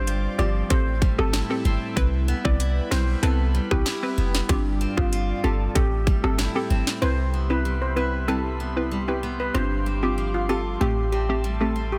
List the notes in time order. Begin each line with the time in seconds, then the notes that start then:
Already playing: G1 G2 G3 C4 F4 G4 D5 G5
0.07 F4, closed hi-hat
0.38 G1 F3 C4 F4 G4 D5
0.70 A1 A2 C4 E4 G4 A4 C5, kick, closed hi-hat
1.02 G3, kick
1.18 G1 C4 G4 A4, cross-stick
1.33 E4, cross-stick, snare, closed hi-hat
1.50 C4 G4 A4
1.65 G1 C4
1.96 C2 C4 E4 B4, kick, closed hi-hat
2.28 B3
2.45 C2 C4 E4 B4 D5, kick
2.60 E4, closed hi-hat
2.91 B1 G3 C4 E4 B4 C5, cross-stick, snare
3.23 C2 B3 C4 E4 A4 B4, closed hi-hat
3.55 G3
3.71 B1 C4 E4 G4 B4, kick, cross-stick
3.86 E4, cross-stick, snare, closed hi-hat
4.03 C4 E4 B4
4.18 F1 B3
4.35 snare
4.49 G1 G2 C4 F4 G4 D5, kick, closed hi-hat
4.81 C4
4.97 G1 C4 F4 G4, kick
5.12 F4, closed hi-hat
5.44 G1 C4 F4 G4 A4
5.75 A1 A2 C4 G4 A4 E5 G5, kick, closed hi-hat
6.07 G3, kick
6.24 G1 C4 G4 A4, cross-stick
6.38 E4, cross-stick, snare, closed hi-hat
6.55 C4 G4 A4
6.70 G1 C4
6.87 snare
7.02 C2 C3 C4 E4 G4 B4 C5 E5 B5 C6
7.34 B3
7.50 C4 E4 B4
7.65 G3
7.82 C5
7.96 C4 E4 B4
8.28 G3 C4 E4 A4 B4
8.60 B3
8.76 C4 E4 B4
8.91 G3
9.08 C4 E4 G4 B4
9.23 B3
9.40 B4
9.54 G1 G2 C4 F4 G4 C5 F5 D6
9.86 C4
10.03 C4 F4 G4
10.18 F3
10.34 F4
10.49 C4 F4 G4 A4
10.81 A1 A2 A3 C4 G4 E5 A5
11.12 C4 G4
11.29 A3 C4 G4
11.44 G3
11.61 A3 C4 G4 A4
11.76 C4
11.92 G4